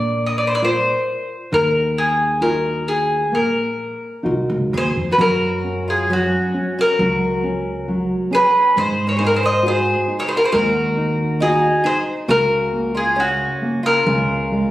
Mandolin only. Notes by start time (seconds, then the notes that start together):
Already playing: D5
0.26 D#5
0.38 D5
0.47 C5
0.55 D5
0.64 C5
1.54 A#4
1.98 G#4
2.42 A#4
2.88 G#4
3.35 A#4
4.77 C5
5.12 B4
5.21 A#4
5.90 G#4
6.13 F#4
6.81 A#4
8.35 B4
8.78 C5
9.09 C#5
9.19 C5
9.27 A#4
9.36 C5
9.45 D#5
9.68 C5
10.20 C#5
10.28 C5
10.37 A#4
10.45 C5
10.52 A#4
11.42 G#4
11.86 C5
12.31 A#4
12.97 G#4
13.20 F#4
13.86 A#4